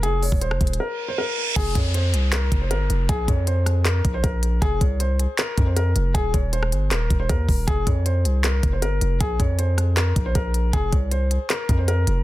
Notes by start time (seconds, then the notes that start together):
0.03 F1 G#4, closed hi-hat
0.23 C#5, open hi-hat
0.32 D#1, kick
0.41 C5, closed hi-hat
0.51 F1, cross-stick
0.61 D#1, kick, closed hi-hat
0.67 closed hi-hat
0.73 closed hi-hat
0.80 A#4, reverse cymbal
1.08 C5
1.18 A#4
1.56 F1 G#4, kick, closed hi-hat, crash, downlifter
1.75 F2 C#5, kick, closed hi-hat
1.94 C5, closed hi-hat
2.13 C2, closed hi-hat
2.33 A#4, clap, closed hi-hat
2.52 F1, kick, closed hi-hat
2.61 C5
2.71 G1 A#4, closed hi-hat
2.90 F1, closed hi-hat
3.09 A#1 G#4, kick, closed hi-hat
3.28 F2 C#5, kick, closed hi-hat
3.47 C5, closed hi-hat
3.66 cross-stick, closed hi-hat
3.85 A#4, clap, closed hi-hat
4.05 A#1, kick, closed hi-hat
4.14 C5
4.24 A#1 A#4, kick, closed hi-hat
4.43 closed hi-hat
4.62 F1 G#4, kick, closed hi-hat
4.81 C2 C#5, kick, closed hi-hat
5.00 C5, closed hi-hat
5.19 closed hi-hat
5.38 A#4, clap, closed hi-hat
5.58 F2, kick, closed hi-hat
5.67 C5
5.76 A#4, closed hi-hat
5.96 F1, closed hi-hat
6.14 D#1 G#4, kick, closed hi-hat
6.34 D#1 C#5, kick, closed hi-hat
6.53 C5, closed hi-hat
6.63 cross-stick
6.72 G1, closed hi-hat
6.91 D#1 A#4, clap, closed hi-hat
7.10 D#1, kick, closed hi-hat
7.20 C5
7.29 D#2 A#4, kick, closed hi-hat
7.49 D#1, kick, open hi-hat
7.67 F1 G#4, kick, closed hi-hat
7.87 F2 C#5, kick, closed hi-hat
8.06 C5, closed hi-hat
8.25 C2, closed hi-hat
8.44 A#4, clap, closed hi-hat
8.63 F1, kick, closed hi-hat
8.73 C5
8.82 G1 A#4, closed hi-hat
9.01 F1, closed hi-hat
9.21 A#1 G#4, kick, closed hi-hat
9.39 F2 C#5, kick, closed hi-hat
9.59 C5, closed hi-hat
9.78 cross-stick, closed hi-hat
9.97 A#4, clap, closed hi-hat
10.16 A#1, kick, closed hi-hat
10.26 C5
10.35 A#1 A#4, kick, closed hi-hat
10.54 closed hi-hat
10.73 F1 G#4, kick, closed hi-hat
10.93 C2 C#5, kick, closed hi-hat
11.11 C5, closed hi-hat
11.31 closed hi-hat
11.50 A#4, clap, closed hi-hat
11.69 F2, kick, closed hi-hat
11.78 C5
11.88 A#4, closed hi-hat
12.07 F1, closed hi-hat